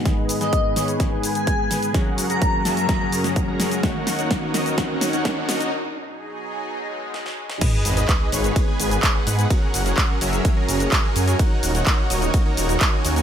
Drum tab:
CC |----------------|----------------|----------------|----------------|
RD |----------------|----------------|----------------|----------------|
HH |x-oxx-oxx-oxx-ox|x-oxx-oxx-oxx-ox|x-oxx-oxx-oxx-ox|----------------|
SH |x-xxx-xxx-xxx-xx|x-xxx-xxx-xxx-xx|x-xxx-xxx-xxx-xx|----------------|
CP |----------------|----------------|----------------|----------------|
SD |o--o--o-o-----o-|o-----o-o--o--o-|o-o-o-o-o-o-o-o-|------------oo-o|
BD |o---o---o---o---|o---o---o---o---|o---o---o---o---|----------------|

CC |x---------------|----------------|----------------|
RD |x---x---x---x---|x---x---x---x---|x---x---x---x---|
HH |x-oxx-oxx-oxx-ox|x-oxx-oxx-oxx-ox|x-oxx-oxx-oxx-ox|
SH |x-xxx-xxx-xxx-xx|x-xxx-xxx-xxx-xx|x-xxx-xxx-xxx-xx|
CP |----x-------x---|----x-------x---|----x-------x---|
SD |----------------|----------------|----------------|
BD |o---o---o---o---|o---o---o---o---|o---o---o---o---|